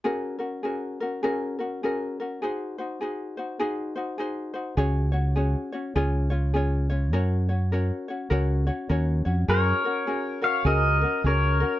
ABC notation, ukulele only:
X:1
M:4/4
L:1/8
Q:"Swing" 1/4=102
K:F#
V:1 name="Ukulele"
[CFGA] [CFA] [CFGA] [CFA] [CFGA] [CFA] [CFGA] [CFA] | [DFG^B] [DFB] [DFGB] [DFB] [DFGB] [DFB] [DFGB] [DFB] | [CFGc] [CFc] [CFGc] [CFc] [CEGc] [CEc] [CEGc] [CEc] | [CFAc] [CFc] [CFAc] [CFc] [CFAc] [CFc] [CFAc] [CFc] |
[CFGA] [CFA] [CFGA] [CFA] [CFGA] [CFA] [CFGA] [CFA] |]